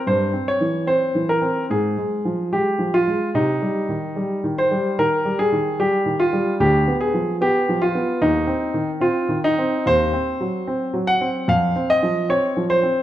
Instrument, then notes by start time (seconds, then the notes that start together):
grand piano
0.07 G2 C5
0.33 C4
0.48 C#5
0.61 E3
0.87 C4 C5
1.15 E3
1.29 A#4
1.42 C4
1.70 G#2 G#4
1.98 G#3
2.25 F3
2.52 G#3 G4
2.79 F3
2.94 F4
3.07 G#3
3.34 C3 D#4
3.62 G3
3.89 D#3
4.16 G3
4.44 D#3
4.58 C5
4.71 G3
4.99 D#3 A#4
5.25 G3
5.39 G#4
5.52 D#3
5.79 G3 G4
6.06 D#3
6.20 F4
6.33 G3
6.60 D2 G4
6.88 B3
7.01 G#4
7.14 F3
7.41 B3 G4
7.69 F3
7.82 F4
7.95 B3
8.22 D#2 D#4
8.47 C4
8.74 D#3
9.01 C4 F4
9.29 D#3
9.44 D#4
9.58 C4
9.86 D#2 C5
10.13 C4
10.41 F#3
10.67 C4
10.94 F#3
11.07 F#5
11.21 C4
11.48 F2 F5
11.76 C4
11.90 D#5
12.03 F3
12.29 C4 C#5
12.57 F3
12.70 C5
12.83 C4